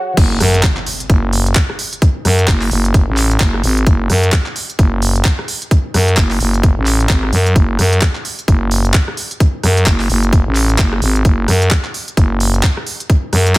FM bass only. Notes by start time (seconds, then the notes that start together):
0.17 F#1
0.40 F#2
1.10 F#1
2.25 F#2
2.48 F#1
2.71 F#1
3.08 A1
3.40 F#1
3.64 G#1
3.87 F#1
4.10 F#2
4.79 F#1
5.94 F#2
6.17 F#1
6.40 F#1
6.77 A1
7.10 G#1
7.33 F#2
7.56 F#1
7.79 F#2
8.48 F#1
9.63 F#2
9.87 F#1
10.10 F#1
10.46 A1
10.79 F#1
11.02 G#1
11.25 F#1
11.48 F#2
12.17 F#1
13.33 F#2